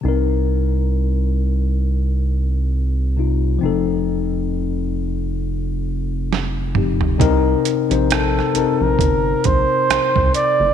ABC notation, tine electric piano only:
X:1
M:4/4
L:1/16
Q:"Swing 16ths" 1/4=67
K:Cdor
V:1 name="Tine electric piano"
[C,CEB]12- [C,CEB]2 [C,CEF]2 | [F,CEA]12- [F,CEA]2 [F,CEG]2 | [C,CEB]2 z [C,CEc]2 z [C,CEB]6 z4 |]